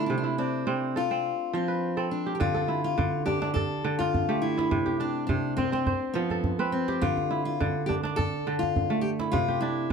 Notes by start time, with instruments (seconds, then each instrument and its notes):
Already playing: kora D3 A3 D4 E4 F4 G4 A4
0.06 kora C3, steel-string acoustic guitar D4
0.18 steel-string acoustic guitar D4
0.24 kora E4
0.38 steel-string acoustic guitar C4, kora D4
0.67 kora C3 C4
0.96 steel-string acoustic guitar F4, kora A4
1.11 kora C4
1.53 kora F3, steel-string acoustic guitar C4
1.68 kora B4
1.97 kora C4 A4
2.11 steel-string acoustic guitar D4
2.26 kora G4
2.35 steel-string acoustic guitar G4
2.40 kora D3, steel-string acoustic guitar F4, djembe bass
2.54 kora A4, djembe tone
2.68 kora E4
2.84 steel-string acoustic guitar F4, djembe slap
2.98 kora D3, djembe bass
3.26 kora D4, steel-string acoustic guitar G4, djembe slap, djembe tone
3.42 kora D4, djembe slap
3.54 steel-string acoustic guitar A4, kora A4, djembe slap, djembe bass
3.84 kora D3
3.99 steel-string acoustic guitar F4, kora F4, djembe tone
4.15 djembe bass
4.29 kora A3 G4
4.42 steel-string acoustic guitar E4
4.57 kora E4, djembe slap
4.71 kora C3, djembe bass
4.86 kora G4, djembe tone
5.00 kora D4, steel-string acoustic guitar D4
5.15 djembe slap
5.27 kora C3, steel-string acoustic guitar D4, djembe bass
5.57 steel-string acoustic guitar C4, kora C4, djembe slap, djembe tone
5.72 kora C4, djembe slap
5.87 kora C5, djembe slap, djembe bass
6.14 kora F3, steel-string acoustic guitar B3
6.30 kora A4, djembe tone
6.44 djembe bass
6.59 kora C4 B4
6.72 steel-string acoustic guitar C4
6.88 kora G4, djembe slap
7.01 kora D3, steel-string acoustic guitar F4, djembe bass
7.17 djembe tone
7.31 kora E4
7.45 steel-string acoustic guitar F4, djembe slap
7.60 kora D3, djembe bass
7.86 kora D4, steel-string acoustic guitar G4, djembe slap, djembe tone
8.03 kora D4, djembe slap
8.16 steel-string acoustic guitar A4, kora A4, djembe slap, djembe bass
8.47 kora D3
8.59 steel-string acoustic guitar F4, djembe tone
8.76 djembe bass
8.90 kora A3
9.01 steel-string acoustic guitar G4
9.19 kora E4, djembe slap
9.32 kora C3, steel-string acoustic guitar F4, djembe bass
9.48 kora G4, djembe tone
9.60 kora D4, steel-string acoustic guitar E4
9.77 djembe slap